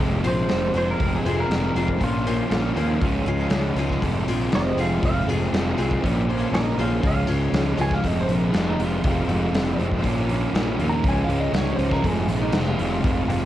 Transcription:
0.00 F1 F2 C3 F3 G#3 C4
0.24 A#1 F3 G#3 C4 F4 G#4 C5, open hi-hat
0.48 F1 F2 C3 F3 G#3, snare, open hi-hat
0.52 C4
0.74 F1 F2 C3 F3 G#3 C4 F4 G#4 C5, open hi-hat
0.78 C5
0.91 A#4
0.99 F1 C3 F3 G#3 C4, kick, open hi-hat
1.15 G#4
1.24 F1 F2 C3 F3 G#3 C4 F4 G#4 C5, open hi-hat
1.40 A#4
1.49 F1 C3 F3 G#3 C4, snare, open hi-hat
1.75 F1 F3 G#3 C4 F4 G#4 C5, open hi-hat
1.88 kick
2.00 A#1 A#2 F3 A#3 C#4 F4, kick, open hi-hat
2.24 F3 A#3 C#4 F4 C5, open hi-hat
2.50 A#1 A#2 F3 A#3 C#4, snare, open hi-hat
2.76 D#2 A#2 F3 A#3 C#4 F4 C5, open hi-hat
3.00 C#2 C#3 F3 G#3 C#4, kick, open hi-hat
3.25 C#2 C#3 F3 G#3 C#4 F4 G#4, open hi-hat
3.50 C#2 C#3 F3, snare, open hi-hat
3.55 G#3 C#4
3.75 C#2 G#3 C#4 F4 G#4, open hi-hat
3.80 F3
3.89 kick, snare
4.01 F1 F2 C3 F3 G#3 C4, kick, open hi-hat
4.27 A#1 F3 G#3 C4 F4 G#4, open hi-hat
4.51 F1 F2 C3 F3, snare, open hi-hat
4.55 G#3 C4 C5 D#5
4.76 F1 C3 F3 G#3 C4 F4 G#4, open hi-hat
4.81 F2 F5
5.02 F1 C3 F3 G#3 C4 F5, kick, open hi-hat
5.26 F1 F3 G#3 C4 F4 G#4, open hi-hat
5.31 F2 C3
5.52 F1 C3 F3 G#3 C4, snare, open hi-hat
5.77 C2 F3 G#3 C4 F4 G#4, open hi-hat
5.91 kick
6.03 A#1 A#2 F3 A#3 C#4, kick, open hi-hat
6.27 F3 A#3 C#4 F4 C5, open hi-hat
6.51 A#1 A#2 F3 A#3 C#4 A#4 D#5, snare, open hi-hat
6.76 A#1 A#2 F3 A#3 C#4 F4 C5, open hi-hat
6.81 G#4 F5
7.02 C#2 C#3 F3 G#3 C#4, kick, open hi-hat
7.07 F5
7.27 C#2 F3 G#3 C#4 F4 C#5, open hi-hat
7.32 C#3
7.52 C#2 C#3 F3 G#3, snare, open hi-hat
7.57 C#4
7.77 C#2 G#3 C#4 F4 C#5, open hi-hat
7.81 F3 G#5
7.91 F5, kick, snare
8.03 F1 F2 C3 F3 G#3 C4 D#5, kick, open hi-hat
8.20 C5
8.28 A#1 F3 G#3 C4 A#4, open hi-hat
8.44 G#4
8.51 F1 F2 C3 F3, snare, open hi-hat
8.56 G#3 C4 F4
8.69 D#4
8.79 F1 F2 C3 F3 G#3 C4 F4, open hi-hat
9.03 F1 C3 F3 G#3 C4, kick, open hi-hat
9.27 F1 C3 F3 G#3 C4, open hi-hat
9.32 F2
9.52 F1 C3 F3, snare, open hi-hat
9.56 G#3 C4
9.79 F1 F3 G#3 C4, open hi-hat
9.92 kick, snare
10.03 A#1 A#2 F3 A#3 C#4, kick, open hi-hat
10.28 F3 A#3 C#4, open hi-hat
10.53 A#1 A#2 F3 A#3 C#4, snare, open hi-hat
10.78 D#2 A#2 F3 A#3 C#4, open hi-hat
10.90 A#5
11.04 C#2 C#3 F3 G#3 C#4, kick, open hi-hat
11.09 G#5
11.24 C#2 C#4 F5
11.29 C#3 F3 G#3, open hi-hat
11.40 D#5
11.52 C#2 C#3 F3 G#3 C#4, snare, open hi-hat
11.58 C#5
11.75 C#2 C#4 C5, open hi-hat
11.80 F3 G#3
11.91 A#4, kick, snare
12.04 F1 F2 C3 F3 G#3 C4 G#4, kick, open hi-hat
12.26 A#1 C4 F4, open hi-hat
12.31 F3 G#3
12.41 D#4
12.52 F1 F2 C3 F3 G#3, snare, open hi-hat
12.57 C4 F4
12.79 F1 F2 C3 F3 G#3 C4, open hi-hat
13.03 F1 C3 F3 G#3 C4, kick, open hi-hat
13.27 F1 F2 C3 F3 G#3 C4, open hi-hat

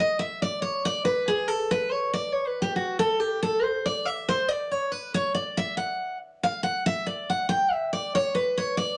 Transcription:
0.00 D#5
0.19 E5
0.42 D5
0.62 C#5
0.85 D5
1.05 B4
1.28 G#4
1.48 A4
1.71 B4
1.92 C#5
2.13 D5
2.33 C#5
2.47 B4
2.62 G4
2.76 F#4
2.99 A4
3.20 G4
3.43 A4
3.63 C5
3.86 D5
4.05 E5
4.29 C5
4.48 D5
4.71 C#5
4.92 B4
5.14 C#5
5.35 D5
5.57 E5
5.77 F#5
6.43 F5
6.63 F#5
6.86 E5
7.07 D5
7.30 F#5
7.49 G5
7.72 E5
7.93 D5
8.15 C#5
8.35 B4
8.57 C#5
8.77 D5

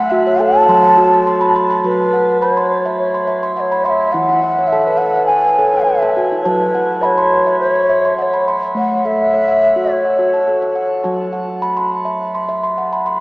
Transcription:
Already playing: A3 F#5
0.00 F#5
0.10 F#4 E5
0.27 C#5
0.40 A4 A5
0.55 C#5
0.68 F#3 C6
0.84 C6
0.98 F#4
1.13 C6
1.27 C6
1.41 B5
1.56 C6
1.70 A5
1.84 F#3 F#4 B4 A5
2.13 F#5
2.41 C#5 B5
2.57 C6
2.85 E5
2.98 C#5
3.14 C6
3.27 E5
3.43 C6
3.56 E5 F#5
3.60 C#5
3.72 B5
3.85 F#5 C6
3.90 E5
4.13 E3 E4 E5 F#5
4.29 F#5
4.43 E5
4.59 C#5
4.68 E5
4.72 A4 A5
4.87 B4
4.98 C#5 F#5
5.16 B4 C#5
5.26 C#5 G#5
5.45 B4
5.59 A4 C#5
5.74 C#5
5.84 B4 E5
6.02 A4 A5
6.17 F#4
6.32 E4
6.43 F#3 F#4 C#5 A5
6.47 B4
6.75 F#5
7.02 C#5 E5 B5
7.18 C6
7.47 E5
7.60 C#5
7.75 C6
7.89 E5
8.05 C6
8.18 C#5 E5 F#5
8.34 B5
8.48 C6
8.75 A3 C#5 F#5
9.05 A4 E5
9.34 C#5
9.48 F#5
9.76 F#4
9.91 C#5
10.05 F#5
10.19 F#4
10.34 A5
10.48 A4
10.62 C#5
10.75 F#5
11.04 F#3 F#4 A5
11.33 F#5
11.62 B5
11.77 C6
12.05 E5
12.35 C6
12.49 E5
12.64 C6
12.78 F#5
12.93 B5
13.06 C6

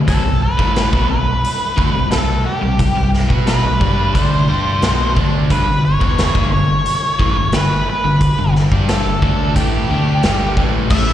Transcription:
0.07 B1 B2 F#3 A4, kick, closed hi-hat
0.24 B1 C3 G3
0.42 B4
0.58 A1 A2 E3 A3, kick
0.76 snare, closed hi-hat
0.92 B1 B2 F#3, kick
1.09 B1 C3 G3 B4
1.45 closed hi-hat
1.76 D2 D3 A3, kick
1.94 B1 C3 G3
2.11 B1 C3 G3 A4, snare, closed hi-hat
2.46 G4
2.61 B1 C3 G3
2.79 kick, closed hi-hat
2.96 B1 C3 G3
3.14 snare
3.29 B2 B3 F#4 B4, kick
3.47 B4, snare, closed hi-hat
3.64 B1 C3 G3
3.80 G2 G3 D4 G4, kick
4.14 D2 D3 A3 D4 C5, kick, closed hi-hat
4.48 G2 G3 D4 G4
4.81 B1 B2 F#3 B3, snare, closed hi-hat
5.16 D2 D3 A3 D4, kick
5.50 G1 G2 D3 B4, kick, closed hi-hat
5.67 G1 G2 D3
5.85 C#5
6.00 E1 E2 B2 E3, kick
6.18 snare, closed hi-hat
6.34 G1 G2 D3, kick
6.52 G1 G2 D3 C#5
6.86 closed hi-hat
7.19 A1 A2 E3, kick
7.36 G1 G2 D3
7.52 G1 G2 D3 B4, snare, closed hi-hat
7.90 B4
8.04 G1 G2 D3
8.21 kick, closed hi-hat
8.38 G1 G2 D3
8.56 snare
8.71 G2 G3 D4 G4, kick
8.89 A4, snare, closed hi-hat
9.05 G1 G2 D3
9.22 D2 D3 A3 D4, kick
9.56 A1 A2 E3 A3 G4, kick, closed hi-hat
9.90 D2 D3 A3 D4
10.23 G1 G2 D3 G3, snare, closed hi-hat
10.57 A1 A2 E3 A3, kick
10.90 A1 A2 E3 A3 B3 C#4 E4 A4 E5, kick, crash

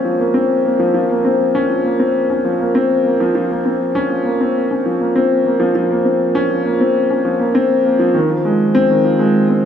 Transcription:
Already playing: F3 A#3 C4 C#4
0.05 F3
0.19 A#3
0.34 C4
0.65 A#3
0.80 F3
0.94 F3
1.09 A#3
1.25 C4
1.55 C#4
1.70 F3
1.84 A#3
2.00 C4
2.30 C#4
2.45 F3
2.60 A#3
2.75 C4
3.05 A#3
3.20 F3
3.35 F3
3.51 A#3
3.65 C4
3.95 C#4
4.10 F3
4.25 A#3
4.41 C4
4.71 C#4
4.86 F3
5.00 A#3
5.16 C4
5.46 A#3
5.60 F3
5.75 F3
5.91 A#3
6.05 C4
6.35 C#4
6.50 F3
6.65 A#3
6.80 C4
7.10 C#4
7.25 F3
7.40 A#3
7.55 C4
7.85 A#3
7.99 F3
8.14 D#3
8.30 F3
8.45 G#3
8.75 C4
8.90 D#3
9.04 F3
9.19 G#3
9.49 C4

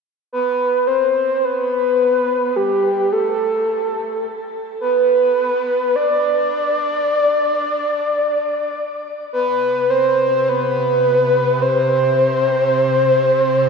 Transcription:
0.33 B4
0.87 C5
1.45 B4
2.56 G4
3.12 A4
4.81 B4
5.96 D5
9.33 C3 B4
9.90 C5
10.49 B4
11.62 C5

